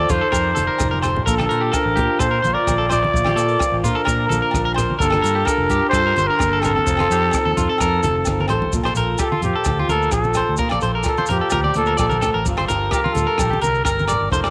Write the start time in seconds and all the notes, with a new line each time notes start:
Already playing: F3 C4 F4 D5
0.09 F2 D#4 F4 A4 C5, kick, closed hi-hat, high conga, low conga, maracas
0.21 A4
0.32 F2 A4 A#4, kick, cross-stick, low agogo, maracas
0.55 F1 C3 A4, closed hi-hat, high conga, maracas
0.67 A#4
0.78 F1 D#4, kick, cross-stick, low conga, low agogo, maracas
0.91 A#4, high conga
1.02 A4 C5, cross-stick, closed hi-hat, low conga, low agogo, maracas
1.16 low conga
1.26 A#1 A#2 D4 A4 A#4, kick, maracas
1.38 A4, cross-stick, high conga, low agogo
1.49 A#2 F4 A#4, closed hi-hat
1.61 G4
1.72 F3 D4 F4 A4 A#4, kick, cross-stick, low agogo, maracas
1.86 A1
1.96 A#2 F4 G4, kick, closed hi-hat, low conga
2.19 A#2 F4 A4 C5, kick, cross-stick, low agogo, maracas
2.31 A#4
2.42 A#1 A#2 C5, closed hi-hat, high conga, maracas
2.54 A#4 D5
2.58 F4
2.67 A#1, muted nylon-string guitar stroke, kick, cross-stick, high conga, low agogo, maracas
2.78 A4
2.89 F4 C5 D5, cross-stick, closed hi-hat, low conga, low agogo, maracas
3.03 muted clean electric guitar stroke, high conga
3.14 A#1 A#2, kick, maracas
3.24 G4, cross-stick, high conga, low agogo
3.36 A#2 G4 A4, closed hi-hat, maracas
3.48 A#4
3.59 F3 F4, kick, cross-stick, low agogo, maracas
3.72 A1
3.84 A#2 D4 F4 A#4, kick, closed hi-hat, low conga, maracas
3.95 A4
4.05 A#2 F4 A#4, kick, cross-stick, low agogo, maracas
4.29 A#1 A#2 A4, closed hi-hat, high conga, maracas
4.42 A#4
4.51 A#1 D4, kick, cross-stick, high conga, low agogo, maracas
4.65 A#4
4.74 A#4 C5, cross-stick, closed hi-hat, low conga, low agogo
4.78 maracas
4.90 high conga
4.99 G1 G2 A#3 D4 F4 G4 A4 A#4, muted nylon-string guitar stroke, kick, maracas
5.10 A4, cross-stick, high conga, low agogo
5.22 G2 G4 A#4, closed hi-hat, maracas
5.35 G4
5.45 G3 D4 F4 A4 A#4, kick, cross-stick, low agogo, maracas
5.58 F1
5.70 G2 G4, kick, closed hi-hat, maracas
5.89 F4 C5, kick, cross-stick, low agogo
5.93 G2 F4 A4, maracas
6.06 A#4
6.16 G1 D3 C5, closed hi-hat, high conga, maracas
6.27 D4 A#4
6.38 G1 A#3, kick, cross-stick, high conga, low agogo, maracas
6.53 A4
6.60 C4 G4 A4, cross-stick, closed hi-hat, low agogo, maracas
6.65 A#4, low conga
6.76 A4, high conga
6.86 F1 F3, kick, maracas
6.97 F4, cross-stick, high conga, low agogo
7.10 F2 D#4 G4, closed hi-hat, maracas
7.31 kick, cross-stick, low agogo, maracas
7.35 C4 D#4
7.45 D#2 A4
7.55 F2 C4 D#4 F4 A4, kick, closed hi-hat, high conga, low conga, maracas
7.69 A4
7.78 F2 D#4 A#4, kick, cross-stick, low agogo, maracas
8.03 F1 C3 A4, closed hi-hat, high conga, low conga, maracas
8.25 G1 D#4, kick, cross-stick, high conga, low agogo, maracas
8.40 A#4, high conga
8.48 A1 C5, cross-stick, closed hi-hat, low conga, low agogo
8.52 A4
8.62 low conga
8.72 A#1 A#2 F4, kick, maracas
8.83 A#1 C5, cross-stick, low agogo
8.95 A#1 A4 A#4, closed hi-hat, low conga, maracas
9.18 F4 G4 A4, kick, cross-stick, low agogo, maracas
9.32 F4, high conga
9.41 F2 F3 G4, closed hi-hat, low conga, maracas
9.55 A4
9.64 D2 F4, kick, cross-stick, low conga, low agogo, maracas
9.79 F4, high conga
9.88 D2 A#2 A4 A#4, closed hi-hat, high conga, maracas
10.02 maracas
10.11 A#1 D4 A4, muted clean electric guitar stroke, kick, cross-stick, low agogo, maracas
10.24 high conga, maracas
10.34 C5, cross-stick, closed hi-hat, low conga, low agogo, maracas
10.49 D2
10.57 A#2 D4 A#4, kick, maracas
10.69 A#1 F4 D5, cross-stick, low agogo
10.81 A#1 A4 C5, closed hi-hat, low conga, maracas
10.95 A#4
11.03 D4, kick, cross-stick, low agogo, maracas
11.08 A4
11.17 F4 C5, high conga
11.26 F2 F3 A#4, closed hi-hat, low conga, maracas
11.31 G4
11.41 A4
11.50 D2 F4 A#4, kick, cross-stick, low conga, low agogo, maracas
11.64 D5, high conga
11.74 D2 A#2 A4, closed hi-hat, high conga, maracas
11.86 A#4, maracas
11.97 A#1 A#2 A4 D5, kick, cross-stick, low agogo, maracas
12.09 A#4, high conga, maracas
12.21 A2 A4, cross-stick, closed hi-hat, low conga, low agogo, maracas
12.34 A1 A#4
12.46 G1 G2 F4, kick, maracas
12.57 G1 C5, cross-stick, low agogo
12.68 G1 G4 A#4, closed hi-hat, low conga, maracas
12.91 F4 G4 A#4, kick, cross-stick, low agogo, maracas
13.04 F4, high conga
13.13 D2 A4, closed hi-hat, low conga
13.17 G3, maracas
13.27 A#4
13.38 A#1 G4, kick, cross-stick, low conga, low agogo, maracas
13.50 G4, high conga
13.61 C2 D3 A#4, closed hi-hat, high conga, maracas
13.75 maracas
13.85 G1 D3 A#4, kick, cross-stick, low agogo, maracas
13.99 high conga, maracas
14.08 D#3 D5, cross-stick, closed hi-hat, low conga, low agogo, maracas
14.21 G1
14.30 F1 F3 C4 D#4 A4 C5, kick, maracas
14.44 F1 D5, cross-stick, low agogo, maracas